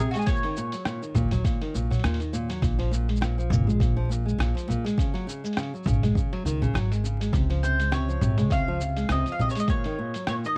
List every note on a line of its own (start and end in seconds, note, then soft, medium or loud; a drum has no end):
0.00 0.14 C3 loud
0.11 0.19 F#4 medium
0.11 open hi-hat soft
0.11 cabasa soft
0.15 0.26 G#3 loud
0.15 0.27 G#4 medium
0.21 cabasa soft
0.26 0.43 A#2 medium
0.26 1.99 C#5 loud
0.26 kick loud
0.26 open hi-hat medium
0.26 cabasa soft
0.36 cabasa soft
0.43 0.56 D#3 loud
0.43 open hi-hat soft
0.57 0.73 A#2 medium
0.57 cabasa medium
0.72 0.85 F#3 medium
0.72 open hi-hat soft
0.72 cabasa soft
0.86 1.01 A#2 loud
0.86 cross-stick medium
0.86 open hi-hat medium
0.86 cabasa soft
1.02 1.14 D#3 medium
1.02 cabasa soft
1.15 1.27 D#2 loud
1.15 1.31 A#2 loud
1.15 kick loud
1.15 low conga medium
1.15 cabasa medium
1.31 1.41 D#2 medium
1.31 1.44 F#3 loud
1.31 open hi-hat soft
1.31 low conga medium
1.31 cabasa soft
1.44 1.59 A#2 medium
1.44 kick loud
1.44 open hi-hat medium
1.44 cabasa soft
1.61 1.73 D#3 loud
1.61 open hi-hat soft
1.74 1.87 A#1 medium
1.74 1.90 A#2 medium
1.74 cabasa medium
1.90 2.02 F#3 medium
1.90 open hi-hat soft
1.90 low conga medium
1.90 cabasa soft
1.94 open hi-hat soft
1.99 open hi-hat soft
2.04 2.57 D#2 medium
2.04 2.19 A#2 loud
2.04 cross-stick loud
2.04 open hi-hat medium
2.04 cabasa medium
2.09 open hi-hat soft
2.14 open hi-hat soft
2.20 2.32 D#3 medium
2.20 open hi-hat soft
2.20 cabasa soft
2.33 2.49 A#2 loud
2.33 cabasa medium
2.49 2.61 F#3 loud
2.49 open hi-hat soft
2.49 cabasa soft
2.62 3.45 A#1 loud
2.62 2.77 A#2 medium
2.62 kick loud
2.62 open hi-hat medium
2.62 cabasa soft
2.79 2.90 F3 medium
2.79 open hi-hat soft
2.91 3.07 A#2 medium
2.91 cabasa medium
3.08 3.20 G#3 medium
3.08 open hi-hat soft
3.16 cabasa soft
3.21 3.36 A#2 loud
3.21 cross-stick medium
3.21 open hi-hat soft
3.21 cabasa soft
3.38 3.50 F3 medium
3.38 cabasa soft
3.50 3.67 F1 loud
3.50 3.66 A#2 loud
3.50 low conga medium
3.50 cabasa medium
3.67 4.33 A#1 medium
3.67 3.79 G#3 loud
3.67 cabasa soft
3.80 3.95 A#2 medium
3.80 kick loud
3.80 open hi-hat medium
3.80 cabasa soft
3.96 4.08 F3 loud
4.09 4.25 A#2 medium
4.09 cabasa medium
4.26 4.37 G#3 medium
4.26 cabasa soft
4.38 4.51 A#1 loud
4.38 4.54 A#2 loud
4.38 cross-stick loud
4.38 open hi-hat medium
4.38 cabasa soft
4.55 4.67 F3 medium
4.55 open hi-hat soft
4.55 cabasa soft
4.68 4.84 A#2 loud
4.68 low conga medium
4.68 cabasa medium
4.85 4.96 G#3 loud
4.85 open hi-hat soft
4.85 cabasa soft
4.98 5.13 C#3 medium
4.98 kick loud
4.98 open hi-hat medium
4.98 cabasa soft
5.14 5.26 F#3 medium
5.14 open hi-hat soft
5.27 5.43 C#3 medium
5.27 cabasa medium
5.44 5.55 G#3 medium
5.44 open hi-hat soft
5.44 cabasa soft
5.53 open hi-hat soft
5.57 5.72 C#3 loud
5.57 cross-stick medium
5.57 open hi-hat medium
5.57 cabasa soft
5.63 open hi-hat soft
5.74 5.85 F#3 medium
5.74 cabasa soft
5.83 5.98 G#1 loud
5.83 6.02 C#3 loud
5.83 kick loud
5.83 low conga medium
5.83 cabasa soft
5.87 cabasa medium
5.93 cabasa soft
6.02 6.12 G#1 medium
6.02 6.15 G#3 loud
6.02 open hi-hat soft
6.02 low conga medium
6.02 cabasa soft
6.15 6.31 C#3 medium
6.15 kick loud
6.15 cabasa soft
6.33 6.44 F#3 loud
6.33 open hi-hat soft
6.45 6.68 C#2 medium
6.45 6.60 D#3 loud
6.45 cabasa medium
6.62 6.73 C#3 loud
6.62 low conga medium
6.62 cabasa soft
6.74 7.27 G#1 medium
6.74 6.89 F#3 medium
6.74 cross-stick loud
6.74 open hi-hat medium
6.74 cabasa soft
6.92 7.03 G#3 medium
6.92 open hi-hat soft
6.92 cabasa soft
7.04 7.19 C#3 medium
7.04 cabasa medium
7.20 7.32 G#3 medium
7.20 open hi-hat soft
7.20 cabasa soft
7.33 8.16 C#2 loud
7.33 7.48 C3 medium
7.33 kick loud
7.33 open hi-hat medium
7.33 cabasa soft
7.50 7.61 F3 loud
7.50 open hi-hat soft
7.63 7.79 C3 medium
7.63 7.93 C5 medium
7.63 cabasa medium
7.79 7.91 G#3 medium
7.79 open hi-hat soft
7.79 cabasa soft
7.91 8.07 C3 loud
7.91 8.53 C#5 loud
7.91 cross-stick medium
7.91 open hi-hat medium
7.91 cabasa soft
8.08 8.20 F3 medium
8.08 cabasa soft
8.21 8.39 G#1 loud
8.21 8.37 C3 medium
8.21 low conga medium
8.21 cabasa medium
8.37 9.04 C#2 medium
8.37 8.50 G#3 loud
8.37 open hi-hat soft
8.37 cabasa soft
8.50 8.66 C3 medium
8.50 9.12 F5 loud
8.50 kick loud
8.50 open hi-hat medium
8.50 cabasa soft
8.68 8.79 F3 loud
8.80 8.96 C3 medium
8.80 cabasa medium
8.96 9.08 G#3 medium
8.96 open hi-hat soft
8.96 cabasa soft
9.09 9.21 C#2 loud
9.09 9.25 C3 loud
9.09 9.35 D#5 medium
9.09 cross-stick loud
9.09 open hi-hat medium
9.09 cabasa soft
9.26 9.38 F3 medium
9.26 open hi-hat soft
9.26 cabasa soft
9.32 9.41 F5 medium
9.39 9.55 C3 loud
9.39 9.50 D#5 medium
9.39 low conga medium
9.39 cabasa soft
9.50 9.60 C#5 medium
9.50 cabasa medium
9.55 9.68 G#3 medium
9.55 open hi-hat soft
9.55 cabasa soft
9.59 9.68 D#5 medium
9.59 cabasa medium
9.68 9.83 A#2 medium
9.68 10.27 C#5 loud
9.68 kick loud
9.68 open hi-hat medium
9.68 cabasa soft
9.84 9.97 D#3 loud
9.84 open hi-hat soft
9.99 10.14 A#2 medium
10.14 10.26 F#3 medium
10.14 open hi-hat soft
10.14 cabasa soft
10.27 10.42 A#2 loud
10.27 10.33 C#5 medium
10.27 cross-stick medium
10.27 open hi-hat medium
10.27 cabasa soft
10.44 10.56 D#3 medium
10.44 10.58 D#5 loud
10.44 cabasa soft